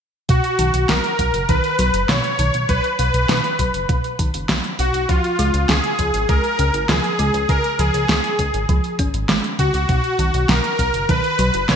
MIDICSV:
0, 0, Header, 1, 5, 480
1, 0, Start_track
1, 0, Tempo, 600000
1, 232, Time_signature, 4, 2, 24, 8
1, 9406, End_track
2, 0, Start_track
2, 0, Title_t, "Supersaw synth"
2, 0, Program_c, 0, 81
2, 236, Note_on_c, 0, 66, 94
2, 714, Note_on_c, 0, 70, 101
2, 729, Note_off_c, 0, 66, 0
2, 1191, Note_on_c, 0, 71, 110
2, 1207, Note_off_c, 0, 70, 0
2, 1640, Note_off_c, 0, 71, 0
2, 1672, Note_on_c, 0, 73, 111
2, 2151, Note_on_c, 0, 71, 107
2, 2167, Note_off_c, 0, 73, 0
2, 2384, Note_off_c, 0, 71, 0
2, 2394, Note_on_c, 0, 71, 102
2, 3321, Note_off_c, 0, 71, 0
2, 3831, Note_on_c, 0, 66, 90
2, 4070, Note_on_c, 0, 65, 100
2, 4079, Note_off_c, 0, 66, 0
2, 4551, Note_on_c, 0, 68, 107
2, 4565, Note_off_c, 0, 65, 0
2, 5033, Note_on_c, 0, 70, 118
2, 5046, Note_off_c, 0, 68, 0
2, 5512, Note_on_c, 0, 68, 103
2, 5527, Note_off_c, 0, 70, 0
2, 5992, Note_on_c, 0, 70, 111
2, 6006, Note_off_c, 0, 68, 0
2, 6235, Note_on_c, 0, 68, 99
2, 6239, Note_off_c, 0, 70, 0
2, 7162, Note_off_c, 0, 68, 0
2, 7672, Note_on_c, 0, 66, 86
2, 7905, Note_off_c, 0, 66, 0
2, 7915, Note_on_c, 0, 66, 93
2, 8398, Note_on_c, 0, 70, 97
2, 8408, Note_off_c, 0, 66, 0
2, 8843, Note_off_c, 0, 70, 0
2, 8877, Note_on_c, 0, 71, 111
2, 9357, Note_on_c, 0, 73, 111
2, 9369, Note_off_c, 0, 71, 0
2, 9406, Note_off_c, 0, 73, 0
2, 9406, End_track
3, 0, Start_track
3, 0, Title_t, "Synth arpeggio sound"
3, 0, Program_c, 1, 84
3, 231, Note_on_c, 1, 47, 81
3, 429, Note_off_c, 1, 47, 0
3, 472, Note_on_c, 1, 51, 75
3, 700, Note_off_c, 1, 51, 0
3, 713, Note_on_c, 1, 54, 74
3, 910, Note_off_c, 1, 54, 0
3, 952, Note_on_c, 1, 47, 73
3, 1149, Note_off_c, 1, 47, 0
3, 1192, Note_on_c, 1, 51, 97
3, 1389, Note_off_c, 1, 51, 0
3, 1432, Note_on_c, 1, 54, 102
3, 1629, Note_off_c, 1, 54, 0
3, 1672, Note_on_c, 1, 47, 74
3, 1869, Note_off_c, 1, 47, 0
3, 1912, Note_on_c, 1, 51, 79
3, 2140, Note_off_c, 1, 51, 0
3, 2153, Note_on_c, 1, 54, 82
3, 2349, Note_off_c, 1, 54, 0
3, 2392, Note_on_c, 1, 47, 73
3, 2589, Note_off_c, 1, 47, 0
3, 2632, Note_on_c, 1, 51, 100
3, 2829, Note_off_c, 1, 51, 0
3, 2872, Note_on_c, 1, 54, 97
3, 3069, Note_off_c, 1, 54, 0
3, 3112, Note_on_c, 1, 47, 80
3, 3309, Note_off_c, 1, 47, 0
3, 3352, Note_on_c, 1, 51, 74
3, 3580, Note_off_c, 1, 51, 0
3, 3593, Note_on_c, 1, 54, 75
3, 3790, Note_off_c, 1, 54, 0
3, 3832, Note_on_c, 1, 47, 77
3, 4029, Note_off_c, 1, 47, 0
3, 4071, Note_on_c, 1, 53, 98
3, 4269, Note_off_c, 1, 53, 0
3, 4312, Note_on_c, 1, 56, 99
3, 4509, Note_off_c, 1, 56, 0
3, 4553, Note_on_c, 1, 49, 76
3, 4749, Note_off_c, 1, 49, 0
3, 4792, Note_on_c, 1, 53, 73
3, 5020, Note_off_c, 1, 53, 0
3, 5032, Note_on_c, 1, 56, 84
3, 5229, Note_off_c, 1, 56, 0
3, 5272, Note_on_c, 1, 49, 76
3, 5469, Note_off_c, 1, 49, 0
3, 5513, Note_on_c, 1, 53, 99
3, 5709, Note_off_c, 1, 53, 0
3, 5753, Note_on_c, 1, 56, 100
3, 5950, Note_off_c, 1, 56, 0
3, 5993, Note_on_c, 1, 49, 78
3, 6189, Note_off_c, 1, 49, 0
3, 6233, Note_on_c, 1, 53, 76
3, 6461, Note_off_c, 1, 53, 0
3, 6473, Note_on_c, 1, 56, 75
3, 6669, Note_off_c, 1, 56, 0
3, 6712, Note_on_c, 1, 49, 75
3, 6909, Note_off_c, 1, 49, 0
3, 6952, Note_on_c, 1, 53, 100
3, 7149, Note_off_c, 1, 53, 0
3, 7192, Note_on_c, 1, 61, 77
3, 7389, Note_off_c, 1, 61, 0
3, 7432, Note_on_c, 1, 56, 97
3, 7660, Note_off_c, 1, 56, 0
3, 7673, Note_on_c, 1, 49, 78
3, 7791, Note_off_c, 1, 49, 0
3, 7911, Note_on_c, 1, 47, 81
3, 8109, Note_off_c, 1, 47, 0
3, 8152, Note_on_c, 1, 51, 76
3, 8380, Note_off_c, 1, 51, 0
3, 8392, Note_on_c, 1, 54, 77
3, 8589, Note_off_c, 1, 54, 0
3, 8633, Note_on_c, 1, 47, 75
3, 8829, Note_off_c, 1, 47, 0
3, 8873, Note_on_c, 1, 51, 100
3, 9069, Note_off_c, 1, 51, 0
3, 9113, Note_on_c, 1, 54, 99
3, 9309, Note_off_c, 1, 54, 0
3, 9354, Note_on_c, 1, 47, 74
3, 9406, Note_off_c, 1, 47, 0
3, 9406, End_track
4, 0, Start_track
4, 0, Title_t, "Analog synth bass"
4, 0, Program_c, 2, 38
4, 233, Note_on_c, 2, 35, 99
4, 328, Note_off_c, 2, 35, 0
4, 472, Note_on_c, 2, 35, 89
4, 568, Note_off_c, 2, 35, 0
4, 592, Note_on_c, 2, 35, 83
4, 687, Note_off_c, 2, 35, 0
4, 712, Note_on_c, 2, 35, 98
4, 808, Note_off_c, 2, 35, 0
4, 953, Note_on_c, 2, 35, 93
4, 1048, Note_off_c, 2, 35, 0
4, 1072, Note_on_c, 2, 30, 82
4, 1168, Note_off_c, 2, 30, 0
4, 1193, Note_on_c, 2, 35, 100
4, 1288, Note_off_c, 2, 35, 0
4, 1432, Note_on_c, 2, 35, 95
4, 1527, Note_off_c, 2, 35, 0
4, 1551, Note_on_c, 2, 30, 81
4, 1647, Note_off_c, 2, 30, 0
4, 1672, Note_on_c, 2, 35, 94
4, 1767, Note_off_c, 2, 35, 0
4, 1912, Note_on_c, 2, 35, 96
4, 2008, Note_off_c, 2, 35, 0
4, 2032, Note_on_c, 2, 35, 82
4, 2127, Note_off_c, 2, 35, 0
4, 2153, Note_on_c, 2, 35, 101
4, 2248, Note_off_c, 2, 35, 0
4, 2393, Note_on_c, 2, 35, 91
4, 2488, Note_off_c, 2, 35, 0
4, 2512, Note_on_c, 2, 35, 78
4, 2608, Note_off_c, 2, 35, 0
4, 2633, Note_on_c, 2, 35, 102
4, 2728, Note_off_c, 2, 35, 0
4, 2873, Note_on_c, 2, 35, 91
4, 2968, Note_off_c, 2, 35, 0
4, 2993, Note_on_c, 2, 30, 81
4, 3088, Note_off_c, 2, 30, 0
4, 3113, Note_on_c, 2, 35, 99
4, 3208, Note_off_c, 2, 35, 0
4, 3353, Note_on_c, 2, 35, 90
4, 3448, Note_off_c, 2, 35, 0
4, 3474, Note_on_c, 2, 30, 79
4, 3569, Note_off_c, 2, 30, 0
4, 3594, Note_on_c, 2, 35, 94
4, 3689, Note_off_c, 2, 35, 0
4, 3834, Note_on_c, 2, 35, 95
4, 3929, Note_off_c, 2, 35, 0
4, 3954, Note_on_c, 2, 35, 78
4, 4049, Note_off_c, 2, 35, 0
4, 4073, Note_on_c, 2, 37, 98
4, 4168, Note_off_c, 2, 37, 0
4, 4314, Note_on_c, 2, 37, 91
4, 4408, Note_off_c, 2, 37, 0
4, 4433, Note_on_c, 2, 37, 81
4, 4528, Note_off_c, 2, 37, 0
4, 4553, Note_on_c, 2, 37, 98
4, 4648, Note_off_c, 2, 37, 0
4, 4793, Note_on_c, 2, 37, 92
4, 4888, Note_off_c, 2, 37, 0
4, 4913, Note_on_c, 2, 32, 81
4, 5008, Note_off_c, 2, 32, 0
4, 5033, Note_on_c, 2, 37, 100
4, 5128, Note_off_c, 2, 37, 0
4, 5273, Note_on_c, 2, 37, 91
4, 5368, Note_off_c, 2, 37, 0
4, 5393, Note_on_c, 2, 32, 80
4, 5488, Note_off_c, 2, 32, 0
4, 5513, Note_on_c, 2, 37, 96
4, 5608, Note_off_c, 2, 37, 0
4, 5752, Note_on_c, 2, 37, 93
4, 5848, Note_off_c, 2, 37, 0
4, 5873, Note_on_c, 2, 37, 80
4, 5968, Note_off_c, 2, 37, 0
4, 5993, Note_on_c, 2, 37, 99
4, 6088, Note_off_c, 2, 37, 0
4, 6232, Note_on_c, 2, 37, 94
4, 6328, Note_off_c, 2, 37, 0
4, 6352, Note_on_c, 2, 37, 79
4, 6448, Note_off_c, 2, 37, 0
4, 6472, Note_on_c, 2, 37, 101
4, 6567, Note_off_c, 2, 37, 0
4, 6712, Note_on_c, 2, 37, 93
4, 6808, Note_off_c, 2, 37, 0
4, 6832, Note_on_c, 2, 32, 82
4, 6928, Note_off_c, 2, 32, 0
4, 6952, Note_on_c, 2, 37, 97
4, 7048, Note_off_c, 2, 37, 0
4, 7192, Note_on_c, 2, 32, 91
4, 7288, Note_off_c, 2, 32, 0
4, 7312, Note_on_c, 2, 32, 81
4, 7408, Note_off_c, 2, 32, 0
4, 7432, Note_on_c, 2, 32, 99
4, 7528, Note_off_c, 2, 32, 0
4, 7672, Note_on_c, 2, 37, 92
4, 7768, Note_off_c, 2, 37, 0
4, 7792, Note_on_c, 2, 37, 81
4, 7888, Note_off_c, 2, 37, 0
4, 7912, Note_on_c, 2, 35, 98
4, 8008, Note_off_c, 2, 35, 0
4, 8152, Note_on_c, 2, 35, 91
4, 8247, Note_off_c, 2, 35, 0
4, 8273, Note_on_c, 2, 35, 80
4, 8368, Note_off_c, 2, 35, 0
4, 8392, Note_on_c, 2, 35, 101
4, 8488, Note_off_c, 2, 35, 0
4, 8632, Note_on_c, 2, 35, 93
4, 8728, Note_off_c, 2, 35, 0
4, 8753, Note_on_c, 2, 30, 82
4, 8848, Note_off_c, 2, 30, 0
4, 8873, Note_on_c, 2, 35, 99
4, 8968, Note_off_c, 2, 35, 0
4, 9112, Note_on_c, 2, 35, 93
4, 9207, Note_off_c, 2, 35, 0
4, 9234, Note_on_c, 2, 30, 80
4, 9329, Note_off_c, 2, 30, 0
4, 9353, Note_on_c, 2, 35, 95
4, 9406, Note_off_c, 2, 35, 0
4, 9406, End_track
5, 0, Start_track
5, 0, Title_t, "Drums"
5, 232, Note_on_c, 9, 42, 54
5, 233, Note_on_c, 9, 36, 110
5, 312, Note_off_c, 9, 42, 0
5, 313, Note_off_c, 9, 36, 0
5, 351, Note_on_c, 9, 42, 27
5, 431, Note_off_c, 9, 42, 0
5, 471, Note_on_c, 9, 42, 89
5, 551, Note_off_c, 9, 42, 0
5, 591, Note_on_c, 9, 42, 50
5, 671, Note_off_c, 9, 42, 0
5, 712, Note_on_c, 9, 38, 109
5, 712, Note_on_c, 9, 42, 51
5, 792, Note_off_c, 9, 38, 0
5, 792, Note_off_c, 9, 42, 0
5, 832, Note_on_c, 9, 42, 26
5, 912, Note_off_c, 9, 42, 0
5, 952, Note_on_c, 9, 42, 89
5, 953, Note_on_c, 9, 36, 58
5, 1032, Note_off_c, 9, 42, 0
5, 1033, Note_off_c, 9, 36, 0
5, 1072, Note_on_c, 9, 42, 51
5, 1152, Note_off_c, 9, 42, 0
5, 1191, Note_on_c, 9, 42, 53
5, 1193, Note_on_c, 9, 36, 114
5, 1271, Note_off_c, 9, 42, 0
5, 1273, Note_off_c, 9, 36, 0
5, 1311, Note_on_c, 9, 42, 26
5, 1391, Note_off_c, 9, 42, 0
5, 1431, Note_on_c, 9, 42, 90
5, 1511, Note_off_c, 9, 42, 0
5, 1551, Note_on_c, 9, 42, 54
5, 1631, Note_off_c, 9, 42, 0
5, 1672, Note_on_c, 9, 38, 112
5, 1672, Note_on_c, 9, 42, 52
5, 1752, Note_off_c, 9, 38, 0
5, 1752, Note_off_c, 9, 42, 0
5, 1791, Note_on_c, 9, 42, 26
5, 1871, Note_off_c, 9, 42, 0
5, 1911, Note_on_c, 9, 42, 95
5, 1991, Note_off_c, 9, 42, 0
5, 2032, Note_on_c, 9, 42, 52
5, 2112, Note_off_c, 9, 42, 0
5, 2152, Note_on_c, 9, 42, 54
5, 2153, Note_on_c, 9, 36, 114
5, 2232, Note_off_c, 9, 42, 0
5, 2233, Note_off_c, 9, 36, 0
5, 2272, Note_on_c, 9, 42, 26
5, 2352, Note_off_c, 9, 42, 0
5, 2392, Note_on_c, 9, 42, 92
5, 2472, Note_off_c, 9, 42, 0
5, 2512, Note_on_c, 9, 42, 52
5, 2592, Note_off_c, 9, 42, 0
5, 2633, Note_on_c, 9, 38, 115
5, 2633, Note_on_c, 9, 42, 50
5, 2713, Note_off_c, 9, 38, 0
5, 2713, Note_off_c, 9, 42, 0
5, 2753, Note_on_c, 9, 42, 26
5, 2833, Note_off_c, 9, 42, 0
5, 2873, Note_on_c, 9, 36, 62
5, 2873, Note_on_c, 9, 42, 94
5, 2953, Note_off_c, 9, 36, 0
5, 2953, Note_off_c, 9, 42, 0
5, 2993, Note_on_c, 9, 42, 53
5, 3073, Note_off_c, 9, 42, 0
5, 3113, Note_on_c, 9, 36, 121
5, 3114, Note_on_c, 9, 42, 51
5, 3193, Note_off_c, 9, 36, 0
5, 3194, Note_off_c, 9, 42, 0
5, 3234, Note_on_c, 9, 42, 26
5, 3314, Note_off_c, 9, 42, 0
5, 3353, Note_on_c, 9, 36, 103
5, 3353, Note_on_c, 9, 42, 93
5, 3433, Note_off_c, 9, 36, 0
5, 3433, Note_off_c, 9, 42, 0
5, 3472, Note_on_c, 9, 42, 55
5, 3552, Note_off_c, 9, 42, 0
5, 3592, Note_on_c, 9, 38, 120
5, 3592, Note_on_c, 9, 42, 50
5, 3672, Note_off_c, 9, 38, 0
5, 3672, Note_off_c, 9, 42, 0
5, 3712, Note_on_c, 9, 42, 26
5, 3792, Note_off_c, 9, 42, 0
5, 3832, Note_on_c, 9, 42, 93
5, 3912, Note_off_c, 9, 42, 0
5, 3953, Note_on_c, 9, 42, 52
5, 4033, Note_off_c, 9, 42, 0
5, 4073, Note_on_c, 9, 36, 116
5, 4073, Note_on_c, 9, 42, 52
5, 4153, Note_off_c, 9, 36, 0
5, 4153, Note_off_c, 9, 42, 0
5, 4193, Note_on_c, 9, 42, 26
5, 4273, Note_off_c, 9, 42, 0
5, 4312, Note_on_c, 9, 42, 90
5, 4392, Note_off_c, 9, 42, 0
5, 4431, Note_on_c, 9, 42, 51
5, 4511, Note_off_c, 9, 42, 0
5, 4552, Note_on_c, 9, 38, 121
5, 4552, Note_on_c, 9, 42, 52
5, 4632, Note_off_c, 9, 38, 0
5, 4632, Note_off_c, 9, 42, 0
5, 4671, Note_on_c, 9, 42, 26
5, 4751, Note_off_c, 9, 42, 0
5, 4790, Note_on_c, 9, 42, 91
5, 4793, Note_on_c, 9, 36, 61
5, 4870, Note_off_c, 9, 42, 0
5, 4873, Note_off_c, 9, 36, 0
5, 4912, Note_on_c, 9, 42, 52
5, 4992, Note_off_c, 9, 42, 0
5, 5032, Note_on_c, 9, 42, 52
5, 5033, Note_on_c, 9, 36, 123
5, 5112, Note_off_c, 9, 42, 0
5, 5113, Note_off_c, 9, 36, 0
5, 5152, Note_on_c, 9, 42, 25
5, 5232, Note_off_c, 9, 42, 0
5, 5272, Note_on_c, 9, 42, 89
5, 5352, Note_off_c, 9, 42, 0
5, 5392, Note_on_c, 9, 42, 53
5, 5472, Note_off_c, 9, 42, 0
5, 5512, Note_on_c, 9, 38, 119
5, 5512, Note_on_c, 9, 42, 51
5, 5592, Note_off_c, 9, 38, 0
5, 5592, Note_off_c, 9, 42, 0
5, 5632, Note_on_c, 9, 42, 25
5, 5712, Note_off_c, 9, 42, 0
5, 5752, Note_on_c, 9, 42, 92
5, 5832, Note_off_c, 9, 42, 0
5, 5873, Note_on_c, 9, 42, 53
5, 5953, Note_off_c, 9, 42, 0
5, 5993, Note_on_c, 9, 36, 115
5, 5993, Note_on_c, 9, 42, 50
5, 6073, Note_off_c, 9, 36, 0
5, 6073, Note_off_c, 9, 42, 0
5, 6113, Note_on_c, 9, 42, 25
5, 6193, Note_off_c, 9, 42, 0
5, 6233, Note_on_c, 9, 42, 89
5, 6313, Note_off_c, 9, 42, 0
5, 6353, Note_on_c, 9, 42, 49
5, 6433, Note_off_c, 9, 42, 0
5, 6473, Note_on_c, 9, 38, 115
5, 6473, Note_on_c, 9, 42, 49
5, 6553, Note_off_c, 9, 38, 0
5, 6553, Note_off_c, 9, 42, 0
5, 6592, Note_on_c, 9, 42, 25
5, 6672, Note_off_c, 9, 42, 0
5, 6711, Note_on_c, 9, 42, 86
5, 6713, Note_on_c, 9, 36, 59
5, 6791, Note_off_c, 9, 42, 0
5, 6793, Note_off_c, 9, 36, 0
5, 6832, Note_on_c, 9, 42, 51
5, 6912, Note_off_c, 9, 42, 0
5, 6952, Note_on_c, 9, 42, 49
5, 6953, Note_on_c, 9, 36, 119
5, 7032, Note_off_c, 9, 42, 0
5, 7033, Note_off_c, 9, 36, 0
5, 7072, Note_on_c, 9, 42, 24
5, 7152, Note_off_c, 9, 42, 0
5, 7191, Note_on_c, 9, 42, 89
5, 7192, Note_on_c, 9, 36, 106
5, 7271, Note_off_c, 9, 42, 0
5, 7272, Note_off_c, 9, 36, 0
5, 7312, Note_on_c, 9, 42, 51
5, 7392, Note_off_c, 9, 42, 0
5, 7432, Note_on_c, 9, 38, 117
5, 7432, Note_on_c, 9, 42, 50
5, 7512, Note_off_c, 9, 38, 0
5, 7512, Note_off_c, 9, 42, 0
5, 7553, Note_on_c, 9, 42, 25
5, 7633, Note_off_c, 9, 42, 0
5, 7672, Note_on_c, 9, 36, 60
5, 7672, Note_on_c, 9, 42, 90
5, 7752, Note_off_c, 9, 36, 0
5, 7752, Note_off_c, 9, 42, 0
5, 7792, Note_on_c, 9, 42, 50
5, 7872, Note_off_c, 9, 42, 0
5, 7911, Note_on_c, 9, 42, 50
5, 7912, Note_on_c, 9, 36, 112
5, 7991, Note_off_c, 9, 42, 0
5, 7992, Note_off_c, 9, 36, 0
5, 8032, Note_on_c, 9, 42, 25
5, 8112, Note_off_c, 9, 42, 0
5, 8152, Note_on_c, 9, 42, 82
5, 8232, Note_off_c, 9, 42, 0
5, 8273, Note_on_c, 9, 42, 47
5, 8353, Note_off_c, 9, 42, 0
5, 8392, Note_on_c, 9, 38, 109
5, 8392, Note_on_c, 9, 42, 47
5, 8472, Note_off_c, 9, 38, 0
5, 8472, Note_off_c, 9, 42, 0
5, 8512, Note_on_c, 9, 42, 24
5, 8592, Note_off_c, 9, 42, 0
5, 8632, Note_on_c, 9, 36, 61
5, 8633, Note_on_c, 9, 42, 85
5, 8712, Note_off_c, 9, 36, 0
5, 8713, Note_off_c, 9, 42, 0
5, 8752, Note_on_c, 9, 42, 48
5, 8832, Note_off_c, 9, 42, 0
5, 8873, Note_on_c, 9, 36, 116
5, 8873, Note_on_c, 9, 42, 48
5, 8953, Note_off_c, 9, 36, 0
5, 8953, Note_off_c, 9, 42, 0
5, 8992, Note_on_c, 9, 42, 24
5, 9072, Note_off_c, 9, 42, 0
5, 9111, Note_on_c, 9, 42, 87
5, 9191, Note_off_c, 9, 42, 0
5, 9230, Note_on_c, 9, 42, 49
5, 9310, Note_off_c, 9, 42, 0
5, 9350, Note_on_c, 9, 38, 110
5, 9350, Note_on_c, 9, 42, 48
5, 9406, Note_off_c, 9, 38, 0
5, 9406, Note_off_c, 9, 42, 0
5, 9406, End_track
0, 0, End_of_file